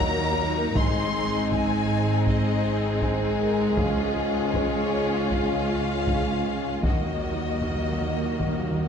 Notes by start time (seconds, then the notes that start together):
Already playing: D#2 A#2 F#3 A#3 D#4 A#4 A#5
0.01 taiko
0.76 G#1 G#2 G#3 C4 G#4 C6, taiko
1.50 G#5, taiko
2.27 D#5, taiko
3.02 taiko
3.40 A#4
3.77 C#2 C#4 F4 G#4, taiko
4.55 C#5, taiko
5.30 F5, taiko
6.07 taiko
6.83 D#2 A#2 D#3 F#3 A#3 F#4 D#5, taiko
6.93 D#3
7.00 D#3
7.08 D#3
7.16 D#3
7.30 D#3
7.38 D#3
7.46 D#3
7.54 D#3
7.61 D#3, taiko
7.70 D#3
7.76 D#3
7.85 D#3
7.92 D#3
8.00 D#3
8.17 D#3
8.24 D#3
8.32 D#3
8.39 D#3, taiko
8.47 D#3
8.54 D#3
8.62 D#3
8.70 D#3
8.78 D#3